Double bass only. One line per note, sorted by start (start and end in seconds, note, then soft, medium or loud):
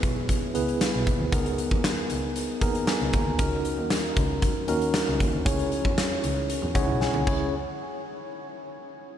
0.03 0.23 B1 medium
0.55 0.74 C#2 medium
0.94 1.04 B1 medium
1.07 1.17 D#2 medium
1.20 1.29 D2 medium
1.32 1.62 C#2 loud
1.71 1.91 D#2 medium
2.11 2.30 C#2 medium
2.61 2.81 D#2 medium
3.00 3.10 C#2 medium
3.14 3.23 D#2 medium
3.26 3.36 D2 medium
3.39 3.68 C#2 loud
3.78 3.98 D#2 medium
4.17 4.36 C#2 medium
4.68 4.88 D#2 medium
5.07 5.17 C#2 medium
5.21 5.30 D#2 medium
5.33 5.43 D2 medium
5.46 5.75 C#2 loud
5.85 6.04 E2 medium
6.24 6.43 C#2 medium
6.62 6.72 E2 medium
6.75 6.85 C#2 medium
6.88 6.98 B1 medium
7.13 7.23 C#2 medium
7.27 7.51 C#2 medium